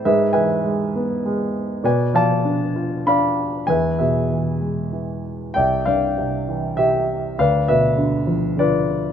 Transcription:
<<
  \new Staff \with { instrumentName = "Grand piano" } { \time 3/4 \key e \phrygian \tempo 4 = 99 << { e''8 gis''4 r4. | gis''8 a''4. b''4 | gis''8 e''4 r4. | g''8 f''4. e''4 |
f''8 e''4. d''4 | } \\ { <gis' b'>8 <b' e''>4. r4 | <b' d''>8 <d'' f''>4. <d'' f''>4 | <b' e''>8 <gis' b'>4. r4 | <d'' e''>8 d''4. g'4 |
<b' d''>8 b'4. <f' b'>4 | } >> }
  \new Staff \with { instrumentName = "Grand piano" } { \clef bass \time 3/4 \key e \phrygian gis,8 e8 gis8 b8 gis4 | b,8 f8 d'8 f'8 d'4 | e,8 b,8 e8 gis8 e4 | c,8 g,8 c8 e8 c4 |
d,8 b,8 d8 f8 d4 | }
>>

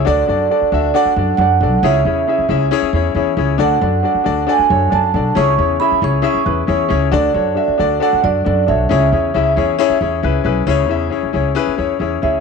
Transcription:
<<
  \new Staff \with { instrumentName = "Vibraphone" } { \time 4/4 \key cis \phrygian \tempo 4 = 136 d''2 fis''4 fis''4 | e''2 r2 | fis''2 gis''4 a''4 | cis'''4 b''8 cis'''2 r8 |
d''2 fis''8 d''4 e''8~ | e''2. r4 | r2. r8 e''8 | }
  \new Staff \with { instrumentName = "Grand piano" } { \time 4/4 \key cis \phrygian <d' fis' a' d''>8 <d' fis' a' d''>8 <d' fis' a' d''>8 <d' fis' a' e''>8 <d' fis' a' d''>8 <d' fis' a' d''>8 <d' fis' a' d''>8 <d' fis' a' d''>8 | <cis' e' gis' cis''>8 <cis' e' gis' cis''>8 <cis' e' gis' e''>8 <cis' e' gis' e''>8 <cis' e' gis' cis''>8 <cis' e' gis' cis''>8 <cis' e' gis' cis''>8 <cis' e' gis' cis''>8 | <d' fis' a' d''>8 <d' fis' a' d''>8 <d' fis' a' d''>8 <d' fis' a' d''>8 <d' fis' a' d''>8 <d' fis' a' cis''>8 <d' fis' a' d''>8 <d' fis' a' d''>8 | <cis' e' gis' cis''>8 <cis' e' gis' cis''>8 <cis' e' gis' e''>8 <cis' e' gis' cis''>8 <cis' e' gis' e''>8 <cis' e' gis' b'>8 <cis' e' gis' cis''>8 <cis' e' gis' cis''>8 |
<d' fis' a' d''>8 <d' fis' a' cis''>8 <d' fis' a' e''>8 <d' fis' a' d''>8 <d' fis' a' d''>8 <d' fis' a' d''>8 <d' fis' a' d''>8 <d' fis' a' cis''>8 | <cis' e' gis' cis''>8 <cis' e' gis' cis''>8 <cis' e' gis' e''>8 <cis' e' gis' cis''>8 <cis' e' gis' cis''>8 <cis' e' gis' cis''>8 <cis' e' gis' b' e''>8 <cis' e' gis' b' gis''>8 | <cis' e' gis' cis''>8 <cis' e' gis' e''>8 <cis' e' gis' cis''>8 <cis' e' gis' cis''>8 <cis' e' gis' b'>8 <cis' e' gis' cis''>8 <cis' e' gis' cis''>8 <cis' e' gis' cis''>8 | }
  \new Staff \with { instrumentName = "Grand piano" } { \clef bass \time 4/4 \key cis \phrygian d4. r2 r8 | cis4. r2 r8 | d4. r2 r8 | cis4. r2 r8 |
d4. r2 r8 | cis4. r2 r8 | cis4. r2 r8 | }
  \new Staff \with { instrumentName = "Upright bass" } { \clef bass \time 4/4 \key cis \phrygian d,8 fis,8 r8 d,8 r8 fis,8 fis,8 b,,8 | cis,8 e,8 r8 cis,8 r8 e,8 e,8 cis,8 | d,8 fis,8 r8 d,8 r8 fis,8 fis,8 b,,8 | cis,8 e,8 r8 cis,8 r8 e,8 e,8 cis,8 |
d,8 fis,8 r8 d,8 r8 fis,8 fis,8 b,,8 | cis,8 e,8 cis,8 e,8 r8 e,8 cis,8 b,,8 | cis,8 e,8 r8 cis,8 r8 e,8 e,8 d,8 | }
>>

